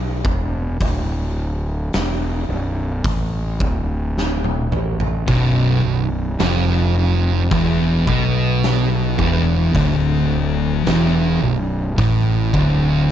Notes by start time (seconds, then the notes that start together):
Already playing: B1
0.25 E1, kick
0.81 D1, kick, open hi-hat
1.93 E1, snare, open hi-hat
2.49 B0
3.04 A1, kick, open hi-hat
3.60 D1, kick
4.18 snare
4.44 high tom
4.71 A1, mid tom
5.00 floor tom
5.27 B0 B1, kick, open hi-hat
5.84 B0 B1
6.39 F1 F2, snare, open hi-hat
7.51 E1 E2, kick, open hi-hat
8.07 B1 B2, kick
8.63 snare, open hi-hat
9.18 E1 E2, kick
9.74 D1 D2, kick, open hi-hat
10.85 E1 E2, snare, open hi-hat
11.42 B0 B1
11.98 A1 A2, kick, open hi-hat
12.53 D1 D2, kick